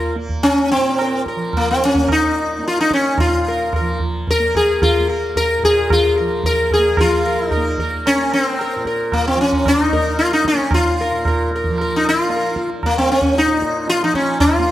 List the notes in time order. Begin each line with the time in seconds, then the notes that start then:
Already playing: A#2 F3 A#3 F4 A#4
0.15 A#3, tabla te
0.29 tabla ge
0.43 C#4, tabla na
0.72 C4
0.76 A#2
0.99 A#4, tabla na
1.26 A#4, tabla ke
1.35 F3
1.53 A#3, tabla na, tabla ge
1.71 C4
1.80 tabla te
1.85 C#4
1.95 A#3, tabla ge
2.08 D#4, tabla na, tabla ge
2.36 tabla te
2.58 A#3
2.64 F4, tabla te
2.77 D#4, tabla te
2.91 C#4, tabla ke
3.05 tabla te
3.17 A#2 F4, tabla na, tabla ge
3.48 A#4
3.73 A#4, tabla na, tabla ge
3.80 F3
4.00 tabla ge
4.27 A#4, tabla tin, tabla ge
4.39 A#3
4.55 G#4, tabla tin, tabla ge
4.82 F4, tabla na, tabla ge
5.00 A#3
5.09 A#4
5.36 A#4, tabla tin, tabla ge
5.58 A#2
5.64 G#4, tabla tin, tabla ge
5.90 F4, tabla na, tabla ge
6.17 F3 A#4
6.44 A#4, tabla tin, tabla ge
6.71 G#4, tabla tin, tabla ge
6.79 A#3
6.97 F3 F4 A#4, tabla na, tabla ge
7.26 A#4
7.49 D#4 A#4, tabla na, tabla ge
7.57 A#3
7.78 A#4, tabla ge
8.06 C#4, tabla na
8.18 A#3
8.32 C4, tabla na
8.59 A#4, tabla na
8.76 A#2
8.85 A#4, tabla ke
9.12 A#3, tabla na, tabla ge
9.27 C4
9.35 F3, tabla te
9.41 C#4
9.52 tabla ge
9.66 D#4, tabla na, tabla ge
9.92 A#3 A#4, tabla ge
10.19 F4, tabla te
10.32 D#4, tabla te
10.45 C#4, tabla ke
10.53 A#3
10.58 tabla te
10.71 F4, tabla na, tabla ge
11.01 A#4
11.11 A#2
11.25 A#4, tabla na, tabla ge
11.51 tabla te
11.56 A#4
11.64 tabla ge
11.70 F3
11.78 A#4, tabla na
11.96 D#4
12.05 tabla na
12.09 F4
12.29 A#3, tabla te
12.36 A#4
12.44 tabla te
12.56 tabla ke
12.70 tabla te
12.83 A#3, tabla na, tabla ge
12.98 C4
13.09 C#4, tabla te
13.22 tabla ge
13.35 D#4, tabla te
13.45 A#2, tabla te
13.62 tabla ke
13.74 tabla te
13.88 F4, tabla te
14.01 F3 D#4, tabla te
14.14 C#4, tabla ke
14.27 tabla te
14.40 F4, tabla na, tabla ge
14.59 A#3